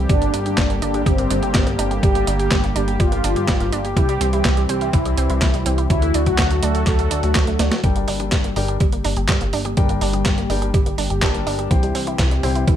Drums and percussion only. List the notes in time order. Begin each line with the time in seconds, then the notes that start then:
0.09 kick, closed hi-hat
0.22 closed hi-hat
0.34 closed hi-hat
0.46 closed hi-hat
0.58 kick, snare, clap, closed hi-hat
0.70 closed hi-hat
0.82 closed hi-hat
0.94 closed hi-hat
1.06 kick, closed hi-hat
1.18 closed hi-hat
1.30 closed hi-hat
1.43 closed hi-hat
1.55 kick, snare, clap, closed hi-hat
1.67 closed hi-hat
1.79 closed hi-hat
1.91 closed hi-hat
2.03 kick, closed hi-hat
2.15 closed hi-hat
2.27 closed hi-hat
2.40 closed hi-hat
2.51 kick, snare, clap, closed hi-hat
2.64 closed hi-hat
2.76 closed hi-hat
2.88 closed hi-hat
3.00 kick, closed hi-hat
3.12 closed hi-hat
3.24 closed hi-hat
3.36 closed hi-hat
3.48 kick, snare, clap, closed hi-hat
3.60 closed hi-hat
3.73 closed hi-hat
3.85 closed hi-hat
3.97 kick, closed hi-hat
4.09 closed hi-hat
4.21 closed hi-hat
4.33 closed hi-hat
4.45 kick, snare, clap, closed hi-hat
4.57 closed hi-hat
4.69 closed hi-hat
4.81 closed hi-hat
4.93 kick, closed hi-hat
5.05 closed hi-hat
5.18 closed hi-hat
5.30 closed hi-hat
5.42 kick, snare, clap, closed hi-hat
5.54 closed hi-hat
5.66 closed hi-hat
5.78 closed hi-hat
5.90 kick, closed hi-hat
6.02 closed hi-hat
6.14 closed hi-hat
6.26 kick, closed hi-hat
6.38 kick, snare, clap, closed hi-hat
6.51 closed hi-hat
6.63 closed hi-hat
6.75 closed hi-hat
6.87 kick, clap, closed hi-hat
6.99 closed hi-hat
7.11 closed hi-hat
7.23 closed hi-hat
7.35 kick, snare, clap, closed hi-hat
7.47 closed hi-hat
7.59 snare, closed hi-hat
7.72 snare, closed hi-hat
7.84 kick, closed hi-hat
7.96 closed hi-hat
8.08 open hi-hat
8.20 closed hi-hat, high tom
8.32 kick, snare, clap, closed hi-hat
8.44 closed hi-hat
8.56 open hi-hat
8.68 closed hi-hat
8.80 kick, closed hi-hat
8.92 closed hi-hat
9.04 open hi-hat, high tom
9.17 closed hi-hat
9.29 kick, snare, clap, closed hi-hat
9.41 closed hi-hat
9.53 open hi-hat
9.65 closed hi-hat, high tom
9.77 kick, closed hi-hat
9.89 closed hi-hat
10.01 open hi-hat
10.13 closed hi-hat, high tom
10.26 kick, snare, clap, closed hi-hat
10.38 closed hi-hat
10.50 open hi-hat
10.62 closed hi-hat
10.74 kick, closed hi-hat
10.86 closed hi-hat
10.98 open hi-hat
11.10 closed hi-hat
11.22 kick, snare, clap, closed hi-hat
11.35 closed hi-hat
11.47 open hi-hat, high tom
11.59 closed hi-hat
11.71 kick, closed hi-hat
11.83 closed hi-hat
11.95 open hi-hat
12.07 closed hi-hat, high tom
12.19 kick, snare, clap, closed hi-hat
12.31 closed hi-hat
12.43 open hi-hat
12.56 closed hi-hat
12.68 kick, closed hi-hat